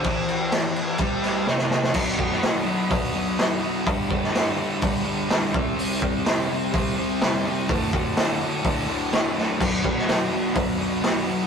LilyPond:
<<
  \new Staff \with { instrumentName = "Electric slide guitar" } { \time 4/4 \key b \phrygian \tempo 4 = 125 c''2~ c''8 r4. | r1 | r1 | r1 |
r1 | r1 | }
  \new Staff \with { instrumentName = "Transistor combo organ" } { \time 4/4 \key b \phrygian <c' g' c''>1 | <d' fis' b'>1 | <b, d' g' b'>2.~ <b, d' g' b'>8 <e' g' c''>8~ | <e' g' c''>1 |
<fis' a' d''>1 | <fis' b' d''>1 | }
  \new Staff \with { instrumentName = "Distorted electric guitar" } { \clef bass \time 4/4 \key b \phrygian e2 g4 c4 | <b, fis b>8 <b, fis b>8 <b, fis b>8 <b, fis b>8 <b, fis b>8 <b, fis b>8 <b, fis b>8 <b, fis b>8 | <g, d g>8 <g, d g>8 <g, d g>8 <g, d g>8 <g, d g>8 <g, d g>8 <g, d g>8 <c g c'>8 | <c g c'>8 <c g c'>8 <c g c'>8 <c g c'>8 <c g c'>8 <c g c'>8 <c g c'>8 <c g c'>8 |
<d, a, d>8 <d, a, d>8 <d, a, d>8 <d, a, d>8 <d, a, d>8 <d, a, d>8 <d, a, d>8 <d, a, d>8 | <b, fis b>8 <b, fis b>8 <b, fis b>8 <b, fis b>8 <b, fis b>8 <b, fis b>8 <b, fis b>8 <b, fis b>8 | }
  \new DrumStaff \with { instrumentName = "Drums" } \drummode { \time 4/4 <cymc bd>8 cymc8 <cymc sn>8 cymc8 <cymc bd>8 <cymc sn>8 sn16 sn16 sn16 sn16 | <cymc bd>8 bd16 sn16 <hho sn>4 <hho bd>4 <hho sn>4 | <hho bd>8 bd16 sn16 <hho sn>4 <hho bd>4 <hho sn>8 bd8 | hho8 bd8 <hho sn>4 <hho bd>4 <hho sn>4 |
<hho bd>8 bd8 <hho sn>4 <hho bd>4 <hho sn>8 sn8 | <cymc bd>8 bd16 sn16 <hho sn>4 <hho bd>4 <hho sn>4 | }
>>